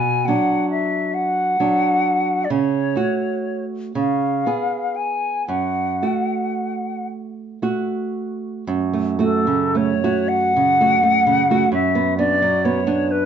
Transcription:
Already playing: nylon-string guitar B2, flute G#5
0.26 nylon-string guitar F#3 D4, flute F#5
0.71 flute E5
1.14 flute F#5
1.60 nylon-string guitar F#3 D4
2.45 flute D5
2.50 nylon-string guitar C#3, flute C#5
2.96 nylon-string guitar A3 F#4
3.95 nylon-string guitar C#3, flute F5
4.46 nylon-string guitar B3 G#4
4.96 flute G#5
5.48 nylon-string guitar F#2, flute F#5
6.02 nylon-string guitar A3 F#4
7.62 nylon-string guitar A3 F#4
8.67 nylon-string guitar F#2
8.93 nylon-string guitar A3
9.19 nylon-string guitar A3 F#4, flute A4
9.47 nylon-string guitar C#3
9.75 nylon-string guitar A3, flute C#5
10.04 nylon-string guitar A3 F#4
10.28 flute F#5
10.56 nylon-string guitar C#3
10.81 nylon-string guitar A3 F#4
11.03 nylon-string guitar A3
11.26 nylon-string guitar C#3
11.51 nylon-string guitar A3 F#4
11.72 nylon-string guitar F#2, flute E5
11.95 nylon-string guitar B3
12.18 nylon-string guitar B3 D4, flute D5
12.42 nylon-string guitar F#3
12.65 nylon-string guitar B3, flute C#5
12.87 nylon-string guitar B3 D4
13.11 flute B4

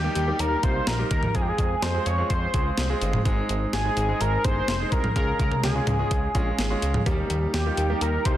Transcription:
Already playing: analog synth lead G4
0.04 grand piano G3 A#3 D#4 G4
0.15 analog synth bass D#2, closed hi-hat
0.27 grand piano G3 A#3 D#4 G4
0.39 analog synth bass D#2, analog synth lead A#4, closed hi-hat
0.63 analog synth bass C2, grand piano G3 A#3 D#4 F4, analog synth lead C5, kick, closed hi-hat
0.87 analog synth bass A#1, analog synth lead A#4, snare, closed hi-hat
0.99 grand piano G3 A#3 D#4 G4
1.11 analog synth bass D#2, analog synth lead A#4, kick, closed hi-hat
1.23 mid tom
1.35 analog synth bass F2, grand piano G#3 C4 F4 G#4, analog synth lead G#4, kick, closed hi-hat
1.42 analog synth lead G4
1.49 analog synth lead G#4
1.58 analog synth bass F2, kick, closed hi-hat
1.82 analog synth bass F2, analog synth lead C5, snare, closed hi-hat
1.94 grand piano G#3 C4 F4 G#4
2.06 analog synth bass F2, analog synth lead C#5, closed hi-hat
2.18 grand piano G#3 C4 F4 G#4
2.30 analog synth bass F2, analog synth lead C5, kick, closed hi-hat
2.54 analog synth bass C#2, grand piano G#3 C4 F4 G#4, kick, closed hi-hat
2.78 analog synth bass C2, snare, closed hi-hat
2.90 grand piano G#3 C4 F4 G#4
3.01 analog synth bass G1, closed hi-hat
3.13 mid tom
3.25 analog synth bass G#1, grand piano G#3 C4 D#4 G#4, kick, closed hi-hat
3.49 analog synth bass G#1, closed hi-hat
3.73 analog synth bass G#1, analog synth lead G#4, snare, closed hi-hat
3.85 grand piano G#3 C4 D#4 G#4
3.97 analog synth bass G#1, closed hi-hat
4.09 grand piano G#3 C4 D#4 G#4
4.21 analog synth bass G#1, analog synth lead A#4, closed hi-hat
4.44 analog synth bass G1, grand piano G#3 C4 D#4 G#4, analog synth lead C5, kick, closed hi-hat
4.68 analog synth bass F1, snare, closed hi-hat
4.80 grand piano G#3 C4 D#4 G#4
4.92 analog synth bass C2, analog synth lead A#4, kick, closed hi-hat
5.04 mid tom
5.16 analog synth bass C#2, grand piano G#3 C#4 F4 G#4, analog synth lead A#4, kick, closed hi-hat
5.39 analog synth bass C#2, analog synth lead A#4, kick, closed hi-hat
5.52 mid tom
5.63 analog synth bass C#2, analog synth lead G#4, snare, closed hi-hat
5.75 grand piano G#3 C#4 F4 G#4
5.87 analog synth bass C#2, closed hi-hat, mid tom
5.99 grand piano G#3 C#4 F4 G#4
6.11 analog synth bass C#2, kick, closed hi-hat
6.35 analog synth bass A#1, grand piano G#3 C#4 F4 G#4, kick, closed hi-hat
6.58 analog synth bass G#1, snare, closed hi-hat
6.70 grand piano G#3 C#4 F4 G#4
6.82 analog synth bass C#2, closed hi-hat
6.94 mid tom
7.06 analog synth bass D#2, grand piano G3 A#3 D#4 G4, kick, closed hi-hat
7.30 analog synth bass D#2, closed hi-hat
7.54 analog synth bass D#2, analog synth lead G4, snare, closed hi-hat
7.66 grand piano G3 A#3 D#4 F4
7.77 analog synth bass D#2, closed hi-hat
7.90 grand piano G3 A#3 D#4 G4
8.01 analog synth bass D#2, analog synth lead A#4, closed hi-hat
8.25 analog synth bass C2, grand piano G3 A#3 D#4 G4, analog synth lead C5, kick, closed hi-hat

